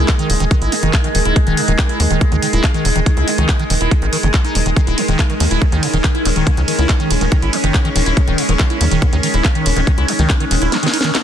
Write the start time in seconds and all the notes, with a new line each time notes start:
Already playing: G#3 D#4 G#4 A#4 D#5
0.08 D#3, kick, clap, closed hi-hat
0.19 D#3, closed hi-hat
0.30 D#1 C#3, open hi-hat
0.40 D#1 D#3, closed hi-hat
0.51 D#3, kick, closed hi-hat
0.62 G#1 E4, closed hi-hat
0.72 D#3, open hi-hat
0.83 F#1 D#3, closed hi-hat
0.94 C#3, kick, clap, closed hi-hat
1.04 D#3, closed hi-hat
1.15 D#1 D#3, open hi-hat
1.25 D#1 E4, closed hi-hat
1.36 D#3, kick, closed hi-hat
1.47 D#1 D#3, closed hi-hat
1.57 C#3, open hi-hat
1.68 D#1 D#3, closed hi-hat
1.79 D#3, kick, clap, closed hi-hat
1.89 E4, closed hi-hat
2.00 D#2 D#3, open hi-hat
2.11 D#1 D#3, closed hi-hat
2.21 C#3, kick, closed hi-hat
2.32 D#2 D#3, closed hi-hat
2.42 D#3, open hi-hat
2.53 D#1 E4, closed hi-hat
2.64 D#3, kick, clap, closed hi-hat
2.74 D#3, closed hi-hat
2.85 D#1 C#3, open hi-hat
2.96 D#1 D#3, closed hi-hat
3.06 D#3, kick, closed hi-hat
3.17 C#2 E4, closed hi-hat
3.28 D#3, open hi-hat
3.38 C#2 D#3, closed hi-hat
3.49 C#3, kick, clap, closed hi-hat
3.59 D#3, closed hi-hat
3.70 D#1 D#3, open hi-hat
3.81 D#1 E4, closed hi-hat
3.91 D#3, kick, closed hi-hat
4.02 G#1 D#3, closed hi-hat
4.13 D#3, open hi-hat
4.23 F#1 D#3, closed hi-hat
4.34 D#3, kick, clap, closed hi-hat
4.45 D#4, closed hi-hat
4.55 D#1 D#3, open hi-hat
4.66 D#1 D#3, closed hi-hat
4.76 D#3 C#4, kick, closed hi-hat
4.87 D#1 E4, closed hi-hat
4.98 D#3, open hi-hat, ride
5.08 D#1 D#3, closed hi-hat
5.19 C#3 C#5, kick, clap, closed hi-hat
5.30 D#3, closed hi-hat
5.40 D#2 D#3, open hi-hat, ride
5.51 D#1 E4, closed hi-hat
5.62 D#3, kick, closed hi-hat
5.72 D#2 D#3, closed hi-hat
5.83 C#3, open hi-hat, ride
5.94 D#1 D#3, closed hi-hat
6.04 D#3, kick, clap, closed hi-hat
6.15 E4, closed hi-hat
6.25 D#1 D#3, open hi-hat, ride
6.36 D#1 D#3, closed hi-hat
6.47 C#3, kick, closed hi-hat
6.57 C#2 D#3, closed hi-hat
6.68 D#3, open hi-hat, ride
6.79 C#2 E4, closed hi-hat
6.89 D#3, kick, clap, closed hi-hat
7.00 D#3, closed hi-hat
7.11 D#1 C#3, open hi-hat, ride
7.21 D#1 D#3, closed hi-hat
7.32 D#3, kick, closed hi-hat
7.42 G#1 E4, closed hi-hat
7.53 D#3, open hi-hat, ride
7.64 F#1 D#3, closed hi-hat
7.74 C#3, kick, clap, closed hi-hat
7.85 D#3, closed hi-hat
7.96 D#1 D#3, open hi-hat, ride
8.06 D#1 E4, closed hi-hat
8.17 D#3, kick, closed hi-hat
8.28 D#1 D#3, closed hi-hat
8.38 C#3, open hi-hat, ride
8.49 D#1 D#3, closed hi-hat
8.59 D#3, kick, clap, closed hi-hat
8.70 E4, closed hi-hat
8.81 D#2 D#3, open hi-hat, ride
8.91 D#1 D#3, closed hi-hat
9.02 C#3, kick, closed hi-hat
9.13 D#2 D#3, closed hi-hat
9.23 D#3, open hi-hat, ride
9.34 D#1 E4, closed hi-hat
9.45 D#3, kick, clap, closed hi-hat
9.55 D#3, closed hi-hat
9.66 D#1 C#3, open hi-hat, ride
9.76 D#1 D#3, closed hi-hat
9.87 D#3, kick, closed hi-hat
9.98 C#2 E4, closed hi-hat
10.08 D#3, open hi-hat, ride
10.19 C#2 D#3, closed hi-hat
10.30 C#3, kick, clap, closed hi-hat
10.40 D#3, closed hi-hat
10.51 D#1 D#3, open hi-hat, ride
10.62 D#1 E4, closed hi-hat
10.72 D#3, snare, closed hi-hat
10.83 D#3, snare, closed hi-hat
10.94 D#4, open hi-hat, ride
11.01 D#3, snare, closed hi-hat
11.15 D#4, snare, clap, closed hi-hat